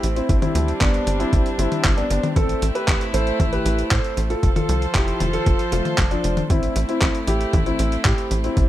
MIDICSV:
0, 0, Header, 1, 5, 480
1, 0, Start_track
1, 0, Key_signature, 0, "minor"
1, 0, Tempo, 517241
1, 272, Time_signature, 4, 2, 24, 8
1, 8063, End_track
2, 0, Start_track
2, 0, Title_t, "Grand piano"
2, 0, Program_c, 0, 0
2, 149, Note_on_c, 0, 60, 79
2, 150, Note_on_c, 0, 64, 89
2, 318, Note_off_c, 0, 60, 0
2, 319, Note_off_c, 0, 64, 0
2, 389, Note_on_c, 0, 60, 79
2, 390, Note_on_c, 0, 64, 90
2, 642, Note_off_c, 0, 60, 0
2, 643, Note_off_c, 0, 64, 0
2, 750, Note_on_c, 0, 59, 82
2, 750, Note_on_c, 0, 62, 94
2, 1003, Note_off_c, 0, 59, 0
2, 1003, Note_off_c, 0, 62, 0
2, 1109, Note_on_c, 0, 64, 93
2, 1110, Note_on_c, 0, 60, 80
2, 1362, Note_off_c, 0, 60, 0
2, 1362, Note_off_c, 0, 64, 0
2, 1472, Note_on_c, 0, 64, 98
2, 1473, Note_on_c, 0, 60, 76
2, 1723, Note_off_c, 0, 64, 0
2, 1724, Note_off_c, 0, 60, 0
2, 1831, Note_on_c, 0, 59, 77
2, 1831, Note_on_c, 0, 62, 101
2, 2083, Note_off_c, 0, 59, 0
2, 2083, Note_off_c, 0, 62, 0
2, 2190, Note_on_c, 0, 60, 76
2, 2191, Note_on_c, 0, 69, 97
2, 2443, Note_off_c, 0, 60, 0
2, 2443, Note_off_c, 0, 69, 0
2, 2552, Note_on_c, 0, 67, 77
2, 2553, Note_on_c, 0, 71, 95
2, 2804, Note_off_c, 0, 67, 0
2, 2804, Note_off_c, 0, 71, 0
2, 2913, Note_on_c, 0, 69, 82
2, 2913, Note_on_c, 0, 72, 105
2, 3164, Note_off_c, 0, 69, 0
2, 3164, Note_off_c, 0, 72, 0
2, 3271, Note_on_c, 0, 71, 95
2, 3272, Note_on_c, 0, 67, 77
2, 3523, Note_off_c, 0, 71, 0
2, 3524, Note_off_c, 0, 67, 0
2, 3632, Note_on_c, 0, 69, 76
2, 3632, Note_on_c, 0, 72, 97
2, 3884, Note_off_c, 0, 69, 0
2, 3884, Note_off_c, 0, 72, 0
2, 3991, Note_on_c, 0, 65, 79
2, 3992, Note_on_c, 0, 69, 93
2, 4159, Note_off_c, 0, 65, 0
2, 4160, Note_off_c, 0, 69, 0
2, 4233, Note_on_c, 0, 65, 76
2, 4233, Note_on_c, 0, 69, 94
2, 4484, Note_off_c, 0, 65, 0
2, 4484, Note_off_c, 0, 69, 0
2, 4593, Note_on_c, 0, 64, 78
2, 4593, Note_on_c, 0, 67, 97
2, 4844, Note_off_c, 0, 64, 0
2, 4844, Note_off_c, 0, 67, 0
2, 4950, Note_on_c, 0, 69, 101
2, 4952, Note_on_c, 0, 65, 77
2, 5203, Note_off_c, 0, 69, 0
2, 5204, Note_off_c, 0, 65, 0
2, 5311, Note_on_c, 0, 57, 76
2, 5312, Note_on_c, 0, 65, 93
2, 5563, Note_off_c, 0, 57, 0
2, 5564, Note_off_c, 0, 65, 0
2, 5670, Note_on_c, 0, 62, 96
2, 5671, Note_on_c, 0, 53, 78
2, 5923, Note_off_c, 0, 53, 0
2, 5923, Note_off_c, 0, 62, 0
2, 6032, Note_on_c, 0, 60, 74
2, 6032, Note_on_c, 0, 64, 90
2, 6284, Note_off_c, 0, 60, 0
2, 6284, Note_off_c, 0, 64, 0
2, 6391, Note_on_c, 0, 60, 76
2, 6391, Note_on_c, 0, 64, 97
2, 6643, Note_off_c, 0, 60, 0
2, 6643, Note_off_c, 0, 64, 0
2, 6751, Note_on_c, 0, 64, 85
2, 6752, Note_on_c, 0, 67, 100
2, 7003, Note_off_c, 0, 64, 0
2, 7004, Note_off_c, 0, 67, 0
2, 7112, Note_on_c, 0, 60, 78
2, 7112, Note_on_c, 0, 64, 94
2, 7363, Note_off_c, 0, 60, 0
2, 7364, Note_off_c, 0, 64, 0
2, 7471, Note_on_c, 0, 67, 97
2, 7472, Note_on_c, 0, 64, 74
2, 7723, Note_off_c, 0, 67, 0
2, 7724, Note_off_c, 0, 64, 0
2, 7834, Note_on_c, 0, 60, 78
2, 7835, Note_on_c, 0, 64, 88
2, 8001, Note_off_c, 0, 60, 0
2, 8001, Note_off_c, 0, 64, 0
2, 8063, End_track
3, 0, Start_track
3, 0, Title_t, "String section"
3, 0, Program_c, 1, 48
3, 0, Note_on_c, 1, 57, 70
3, 0, Note_on_c, 1, 60, 69
3, 0, Note_on_c, 1, 64, 85
3, 252, Note_off_c, 1, 64, 0
3, 253, Note_off_c, 1, 57, 0
3, 270, Note_on_c, 1, 62, 84
3, 271, Note_on_c, 1, 55, 76
3, 2172, Note_off_c, 1, 62, 0
3, 2173, Note_off_c, 1, 55, 0
3, 2190, Note_on_c, 1, 57, 79
3, 2191, Note_on_c, 1, 64, 86
3, 4075, Note_off_c, 1, 60, 0
3, 4092, Note_off_c, 1, 57, 0
3, 4093, Note_off_c, 1, 64, 0
3, 4112, Note_on_c, 1, 53, 73
3, 4113, Note_on_c, 1, 65, 67
3, 4114, Note_on_c, 1, 69, 67
3, 4114, Note_on_c, 1, 72, 83
3, 6013, Note_off_c, 1, 53, 0
3, 6013, Note_off_c, 1, 65, 0
3, 6014, Note_off_c, 1, 69, 0
3, 6014, Note_off_c, 1, 72, 0
3, 6030, Note_on_c, 1, 64, 80
3, 6031, Note_on_c, 1, 57, 72
3, 6031, Note_on_c, 1, 60, 67
3, 7932, Note_off_c, 1, 64, 0
3, 7933, Note_off_c, 1, 57, 0
3, 7951, Note_on_c, 1, 55, 77
3, 7952, Note_on_c, 1, 62, 78
3, 8063, Note_off_c, 1, 55, 0
3, 8063, Note_off_c, 1, 60, 0
3, 8063, Note_off_c, 1, 62, 0
3, 8063, End_track
4, 0, Start_track
4, 0, Title_t, "Analog synth bass"
4, 0, Program_c, 2, 38
4, 31, Note_on_c, 2, 33, 78
4, 200, Note_off_c, 2, 33, 0
4, 272, Note_on_c, 2, 31, 86
4, 441, Note_off_c, 2, 31, 0
4, 510, Note_on_c, 2, 38, 105
4, 680, Note_off_c, 2, 38, 0
4, 752, Note_on_c, 2, 31, 93
4, 921, Note_off_c, 2, 31, 0
4, 991, Note_on_c, 2, 31, 91
4, 1160, Note_off_c, 2, 31, 0
4, 1232, Note_on_c, 2, 31, 91
4, 1317, Note_off_c, 2, 31, 0
4, 1471, Note_on_c, 2, 31, 106
4, 1556, Note_off_c, 2, 31, 0
4, 1713, Note_on_c, 2, 31, 105
4, 1881, Note_off_c, 2, 31, 0
4, 1952, Note_on_c, 2, 31, 105
4, 2037, Note_off_c, 2, 31, 0
4, 2193, Note_on_c, 2, 33, 101
4, 2361, Note_off_c, 2, 33, 0
4, 2432, Note_on_c, 2, 33, 81
4, 2517, Note_off_c, 2, 33, 0
4, 2672, Note_on_c, 2, 33, 84
4, 2757, Note_off_c, 2, 33, 0
4, 2911, Note_on_c, 2, 33, 75
4, 3080, Note_off_c, 2, 33, 0
4, 3153, Note_on_c, 2, 33, 95
4, 3321, Note_off_c, 2, 33, 0
4, 3391, Note_on_c, 2, 33, 84
4, 3560, Note_off_c, 2, 33, 0
4, 3632, Note_on_c, 2, 45, 88
4, 3716, Note_off_c, 2, 45, 0
4, 3871, Note_on_c, 2, 33, 81
4, 4040, Note_off_c, 2, 33, 0
4, 4113, Note_on_c, 2, 29, 82
4, 4281, Note_off_c, 2, 29, 0
4, 4351, Note_on_c, 2, 36, 106
4, 4520, Note_off_c, 2, 36, 0
4, 4592, Note_on_c, 2, 29, 93
4, 4761, Note_off_c, 2, 29, 0
4, 4831, Note_on_c, 2, 29, 93
4, 5000, Note_off_c, 2, 29, 0
4, 5071, Note_on_c, 2, 29, 91
4, 5156, Note_off_c, 2, 29, 0
4, 5310, Note_on_c, 2, 29, 101
4, 5395, Note_off_c, 2, 29, 0
4, 5552, Note_on_c, 2, 29, 87
4, 5721, Note_off_c, 2, 29, 0
4, 5791, Note_on_c, 2, 29, 89
4, 5960, Note_off_c, 2, 29, 0
4, 6032, Note_on_c, 2, 33, 104
4, 6201, Note_off_c, 2, 33, 0
4, 6271, Note_on_c, 2, 33, 85
4, 6356, Note_off_c, 2, 33, 0
4, 6512, Note_on_c, 2, 33, 85
4, 6596, Note_off_c, 2, 33, 0
4, 6750, Note_on_c, 2, 33, 81
4, 6920, Note_off_c, 2, 33, 0
4, 6992, Note_on_c, 2, 33, 100
4, 7161, Note_off_c, 2, 33, 0
4, 7231, Note_on_c, 2, 33, 85
4, 7401, Note_off_c, 2, 33, 0
4, 7472, Note_on_c, 2, 45, 86
4, 7556, Note_off_c, 2, 45, 0
4, 7711, Note_on_c, 2, 33, 81
4, 7880, Note_off_c, 2, 33, 0
4, 7952, Note_on_c, 2, 31, 84
4, 8063, Note_off_c, 2, 31, 0
4, 8063, End_track
5, 0, Start_track
5, 0, Title_t, "Drums"
5, 32, Note_on_c, 9, 42, 98
5, 124, Note_off_c, 9, 42, 0
5, 152, Note_on_c, 9, 42, 40
5, 245, Note_off_c, 9, 42, 0
5, 272, Note_on_c, 9, 36, 124
5, 272, Note_on_c, 9, 42, 69
5, 365, Note_off_c, 9, 36, 0
5, 365, Note_off_c, 9, 42, 0
5, 392, Note_on_c, 9, 42, 44
5, 392, Note_on_c, 9, 48, 79
5, 485, Note_off_c, 9, 42, 0
5, 485, Note_off_c, 9, 48, 0
5, 512, Note_on_c, 9, 42, 99
5, 604, Note_off_c, 9, 42, 0
5, 634, Note_on_c, 9, 42, 42
5, 726, Note_off_c, 9, 42, 0
5, 752, Note_on_c, 9, 36, 124
5, 753, Note_on_c, 9, 39, 126
5, 753, Note_on_c, 9, 42, 69
5, 845, Note_off_c, 9, 36, 0
5, 846, Note_off_c, 9, 39, 0
5, 846, Note_off_c, 9, 42, 0
5, 873, Note_on_c, 9, 42, 41
5, 966, Note_off_c, 9, 42, 0
5, 993, Note_on_c, 9, 42, 97
5, 1086, Note_off_c, 9, 42, 0
5, 1114, Note_on_c, 9, 42, 42
5, 1207, Note_off_c, 9, 42, 0
5, 1232, Note_on_c, 9, 36, 126
5, 1234, Note_on_c, 9, 42, 70
5, 1325, Note_off_c, 9, 36, 0
5, 1327, Note_off_c, 9, 42, 0
5, 1354, Note_on_c, 9, 42, 43
5, 1447, Note_off_c, 9, 42, 0
5, 1474, Note_on_c, 9, 42, 95
5, 1567, Note_off_c, 9, 42, 0
5, 1594, Note_on_c, 9, 42, 42
5, 1594, Note_on_c, 9, 48, 60
5, 1687, Note_off_c, 9, 42, 0
5, 1687, Note_off_c, 9, 48, 0
5, 1713, Note_on_c, 9, 36, 121
5, 1713, Note_on_c, 9, 39, 127
5, 1713, Note_on_c, 9, 42, 65
5, 1805, Note_off_c, 9, 36, 0
5, 1806, Note_off_c, 9, 39, 0
5, 1806, Note_off_c, 9, 42, 0
5, 1835, Note_on_c, 9, 42, 40
5, 1927, Note_off_c, 9, 42, 0
5, 1953, Note_on_c, 9, 42, 96
5, 2046, Note_off_c, 9, 42, 0
5, 2074, Note_on_c, 9, 42, 41
5, 2074, Note_on_c, 9, 48, 78
5, 2167, Note_off_c, 9, 42, 0
5, 2167, Note_off_c, 9, 48, 0
5, 2193, Note_on_c, 9, 36, 120
5, 2193, Note_on_c, 9, 42, 70
5, 2285, Note_off_c, 9, 42, 0
5, 2286, Note_off_c, 9, 36, 0
5, 2313, Note_on_c, 9, 42, 41
5, 2406, Note_off_c, 9, 42, 0
5, 2434, Note_on_c, 9, 42, 95
5, 2526, Note_off_c, 9, 42, 0
5, 2554, Note_on_c, 9, 42, 41
5, 2647, Note_off_c, 9, 42, 0
5, 2673, Note_on_c, 9, 36, 127
5, 2674, Note_on_c, 9, 39, 126
5, 2674, Note_on_c, 9, 42, 67
5, 2766, Note_off_c, 9, 36, 0
5, 2767, Note_off_c, 9, 39, 0
5, 2767, Note_off_c, 9, 42, 0
5, 2795, Note_on_c, 9, 42, 41
5, 2888, Note_off_c, 9, 42, 0
5, 2913, Note_on_c, 9, 42, 100
5, 3006, Note_off_c, 9, 42, 0
5, 3034, Note_on_c, 9, 42, 39
5, 3127, Note_off_c, 9, 42, 0
5, 3153, Note_on_c, 9, 36, 124
5, 3154, Note_on_c, 9, 42, 69
5, 3154, Note_on_c, 9, 48, 62
5, 3246, Note_off_c, 9, 36, 0
5, 3246, Note_off_c, 9, 42, 0
5, 3246, Note_off_c, 9, 48, 0
5, 3272, Note_on_c, 9, 42, 42
5, 3365, Note_off_c, 9, 42, 0
5, 3393, Note_on_c, 9, 42, 98
5, 3486, Note_off_c, 9, 42, 0
5, 3513, Note_on_c, 9, 42, 40
5, 3605, Note_off_c, 9, 42, 0
5, 3632, Note_on_c, 9, 39, 127
5, 3632, Note_on_c, 9, 42, 67
5, 3633, Note_on_c, 9, 36, 127
5, 3725, Note_off_c, 9, 36, 0
5, 3725, Note_off_c, 9, 39, 0
5, 3725, Note_off_c, 9, 42, 0
5, 3753, Note_on_c, 9, 42, 38
5, 3846, Note_off_c, 9, 42, 0
5, 3872, Note_on_c, 9, 42, 89
5, 3965, Note_off_c, 9, 42, 0
5, 3992, Note_on_c, 9, 42, 40
5, 4085, Note_off_c, 9, 42, 0
5, 4112, Note_on_c, 9, 36, 121
5, 4112, Note_on_c, 9, 42, 71
5, 4205, Note_off_c, 9, 36, 0
5, 4205, Note_off_c, 9, 42, 0
5, 4233, Note_on_c, 9, 42, 41
5, 4233, Note_on_c, 9, 48, 76
5, 4326, Note_off_c, 9, 42, 0
5, 4326, Note_off_c, 9, 48, 0
5, 4352, Note_on_c, 9, 42, 92
5, 4445, Note_off_c, 9, 42, 0
5, 4473, Note_on_c, 9, 42, 37
5, 4566, Note_off_c, 9, 42, 0
5, 4591, Note_on_c, 9, 39, 127
5, 4591, Note_on_c, 9, 42, 63
5, 4592, Note_on_c, 9, 36, 125
5, 4684, Note_off_c, 9, 39, 0
5, 4684, Note_off_c, 9, 42, 0
5, 4685, Note_off_c, 9, 36, 0
5, 4711, Note_on_c, 9, 42, 38
5, 4804, Note_off_c, 9, 42, 0
5, 4829, Note_on_c, 9, 42, 94
5, 4829, Note_on_c, 9, 48, 64
5, 4922, Note_off_c, 9, 42, 0
5, 4922, Note_off_c, 9, 48, 0
5, 4950, Note_on_c, 9, 42, 39
5, 5043, Note_off_c, 9, 42, 0
5, 5070, Note_on_c, 9, 42, 67
5, 5072, Note_on_c, 9, 36, 127
5, 5163, Note_off_c, 9, 42, 0
5, 5165, Note_off_c, 9, 36, 0
5, 5189, Note_on_c, 9, 42, 40
5, 5282, Note_off_c, 9, 42, 0
5, 5310, Note_on_c, 9, 42, 94
5, 5402, Note_off_c, 9, 42, 0
5, 5432, Note_on_c, 9, 42, 39
5, 5432, Note_on_c, 9, 48, 58
5, 5524, Note_off_c, 9, 42, 0
5, 5524, Note_off_c, 9, 48, 0
5, 5551, Note_on_c, 9, 39, 124
5, 5551, Note_on_c, 9, 42, 65
5, 5553, Note_on_c, 9, 36, 123
5, 5644, Note_off_c, 9, 39, 0
5, 5644, Note_off_c, 9, 42, 0
5, 5645, Note_off_c, 9, 36, 0
5, 5671, Note_on_c, 9, 42, 38
5, 5764, Note_off_c, 9, 42, 0
5, 5791, Note_on_c, 9, 42, 91
5, 5884, Note_off_c, 9, 42, 0
5, 5912, Note_on_c, 9, 42, 38
5, 5912, Note_on_c, 9, 48, 76
5, 6004, Note_off_c, 9, 42, 0
5, 6004, Note_off_c, 9, 48, 0
5, 6032, Note_on_c, 9, 42, 67
5, 6033, Note_on_c, 9, 36, 122
5, 6125, Note_off_c, 9, 36, 0
5, 6125, Note_off_c, 9, 42, 0
5, 6150, Note_on_c, 9, 42, 40
5, 6243, Note_off_c, 9, 42, 0
5, 6271, Note_on_c, 9, 42, 95
5, 6364, Note_off_c, 9, 42, 0
5, 6391, Note_on_c, 9, 42, 39
5, 6484, Note_off_c, 9, 42, 0
5, 6510, Note_on_c, 9, 39, 121
5, 6510, Note_on_c, 9, 42, 63
5, 6512, Note_on_c, 9, 36, 118
5, 6603, Note_off_c, 9, 39, 0
5, 6603, Note_off_c, 9, 42, 0
5, 6605, Note_off_c, 9, 36, 0
5, 6632, Note_on_c, 9, 42, 37
5, 6724, Note_off_c, 9, 42, 0
5, 6751, Note_on_c, 9, 42, 95
5, 6843, Note_off_c, 9, 42, 0
5, 6872, Note_on_c, 9, 42, 38
5, 6965, Note_off_c, 9, 42, 0
5, 6991, Note_on_c, 9, 42, 67
5, 6991, Note_on_c, 9, 48, 60
5, 6993, Note_on_c, 9, 36, 118
5, 7084, Note_off_c, 9, 42, 0
5, 7084, Note_off_c, 9, 48, 0
5, 7085, Note_off_c, 9, 36, 0
5, 7111, Note_on_c, 9, 42, 39
5, 7204, Note_off_c, 9, 42, 0
5, 7230, Note_on_c, 9, 42, 92
5, 7323, Note_off_c, 9, 42, 0
5, 7350, Note_on_c, 9, 42, 38
5, 7443, Note_off_c, 9, 42, 0
5, 7471, Note_on_c, 9, 39, 118
5, 7471, Note_on_c, 9, 42, 62
5, 7472, Note_on_c, 9, 36, 120
5, 7563, Note_off_c, 9, 39, 0
5, 7563, Note_off_c, 9, 42, 0
5, 7565, Note_off_c, 9, 36, 0
5, 7591, Note_on_c, 9, 42, 36
5, 7684, Note_off_c, 9, 42, 0
5, 7711, Note_on_c, 9, 42, 91
5, 7804, Note_off_c, 9, 42, 0
5, 7832, Note_on_c, 9, 42, 37
5, 7925, Note_off_c, 9, 42, 0
5, 7951, Note_on_c, 9, 42, 69
5, 7952, Note_on_c, 9, 36, 113
5, 8044, Note_off_c, 9, 42, 0
5, 8045, Note_off_c, 9, 36, 0
5, 8063, End_track
0, 0, End_of_file